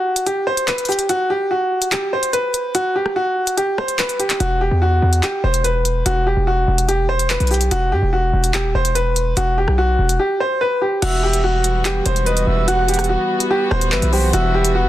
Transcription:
Already playing: F#4
0.16 closed hi-hat
0.26 G4, closed hi-hat
0.47 C5
0.57 closed hi-hat
0.68 B4, clap, closed hi-hat
0.78 closed hi-hat
0.85 G4, closed hi-hat, open hi-hat
0.92 closed hi-hat
0.99 closed hi-hat
1.09 F#4, closed hi-hat
1.30 G4
1.51 F#4
1.82 closed hi-hat
1.92 G4, clap, closed hi-hat
2.13 C5
2.23 closed hi-hat
2.33 B4, closed hi-hat
2.54 closed hi-hat
2.75 F#4, closed hi-hat
2.96 G4
3.06 cross-stick
3.16 F#4
3.47 closed hi-hat
3.57 G4, closed hi-hat
3.78 C5, cross-stick
3.88 closed hi-hat
3.99 B4, clap, closed hi-hat
4.09 closed hi-hat
4.19 G4, closed hi-hat
4.30 clap, closed hi-hat
4.40 E1 F#4, closed hi-hat
4.61 G4
4.71 E2
4.82 F#4
5.02 E2
5.13 closed hi-hat
5.23 G4, clap, closed hi-hat
5.44 E1 C5
5.54 closed hi-hat
5.64 B4, closed hi-hat
5.85 closed hi-hat
6.06 E1 F#4, closed hi-hat
6.27 G4
6.37 E1
6.47 F#4
6.68 E1
6.78 closed hi-hat
6.88 G4, closed hi-hat
7.09 C5
7.19 closed hi-hat
7.30 B4, clap, closed hi-hat
7.40 B1, closed hi-hat
7.47 G4, closed hi-hat, open hi-hat
7.54 closed hi-hat
7.61 closed hi-hat
7.71 E1 F#4, closed hi-hat
7.92 G2 G4
8.02 E1
8.13 F#4
8.33 E1
8.44 closed hi-hat
8.54 G4, clap, closed hi-hat
8.64 D#1
8.75 E1 C5
8.85 closed hi-hat
8.95 B4, closed hi-hat
9.16 closed hi-hat
9.37 E1 F#4, closed hi-hat
9.58 G4
9.68 B1, cross-stick
9.78 F#4
9.99 E1
10.09 closed hi-hat
10.19 G4
10.40 C5
10.61 B4
10.82 G4
11.02 E1 E3 G3 B3 F#4 E5, closed hi-hat, crash
11.23 G4
11.33 closed hi-hat
11.44 F#4
11.64 closed hi-hat
11.85 G4, clap, closed hi-hat
12.06 E1 C5, closed hi-hat
12.16 closed hi-hat
12.26 B4 D#5, closed hi-hat
12.37 closed hi-hat
12.47 E1 E5
12.68 F#4 F#5, closed hi-hat
12.88 G4, closed hi-hat
12.94 closed hi-hat
12.99 cross-stick, closed hi-hat
13.04 closed hi-hat
13.09 F#4
13.40 closed hi-hat
13.50 G4
13.71 D#1 C5, cross-stick
13.81 closed hi-hat
13.92 G1 B4 E5, clap
14.02 B1, closed hi-hat
14.12 G4 C5, open hi-hat
14.33 E1 F#4 E5, closed hi-hat
14.54 G4
14.65 closed hi-hat
14.75 F#4
14.85 G2

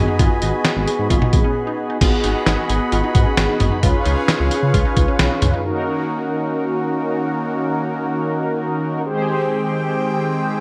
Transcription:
Already playing: B3 F#4 G#4 D#5 G#5 B5
0.08 D#4
0.19 G#1 F4, kick, closed hi-hat
0.42 G#1 D#4, closed hi-hat
0.65 D#4, snare, closed hi-hat
0.76 G#1
0.87 G#4, closed hi-hat
0.99 G#2
1.10 G#1 F4, kick, closed hi-hat
1.22 D#4, mid tom
1.33 G#1, kick, closed hi-hat
1.44 C#4
1.67 D#4
1.90 D#4
2.01 G#1 B3 F4 F#4 G#4 D#5 F#5 B5, kick, closed hi-hat, crash
2.24 G#1 D#4, closed hi-hat
2.46 G#1 D#4, snare, closed hi-hat
2.69 G#1 G#4, closed hi-hat
2.92 G#1 F4, closed hi-hat
3.04 D#4
3.15 G#2, kick, closed hi-hat
3.26 C#4
3.37 G#1, snare, closed hi-hat
3.49 D#4
3.60 G#1, closed hi-hat, mid tom
3.72 D#4
3.83 C#2 C#4 F4 G#4 B4 C#5 F5, kick, closed hi-hat
4.06 C#2 D#4, closed hi-hat
4.28 D#4, snare, closed hi-hat
4.40 C#2
4.51 G#4, closed hi-hat
4.63 C#3
4.74 C#2 F4, kick, closed hi-hat
4.85 D#4
4.97 C#2, kick, closed hi-hat
5.08 C#4
5.19 B1, snare, closed hi-hat
5.31 D#4
5.42 C#2, closed hi-hat, mid tom
5.54 D#4
5.65 D#3 A#3 C#4 D#4 F#4 A#4
9.06 G#3 C4 G4 G#4 C5 G5

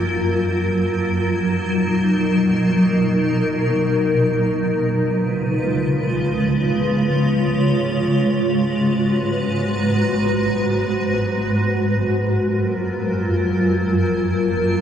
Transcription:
Already playing: F#2 F#3 F4 A#4
1.06 B2 D#4 A#4
4.70 C#3 G#3 F4 B4
6.52 C#5
8.34 G#2 F#4 B4
11.97 F#2 F#3 F4 A#4

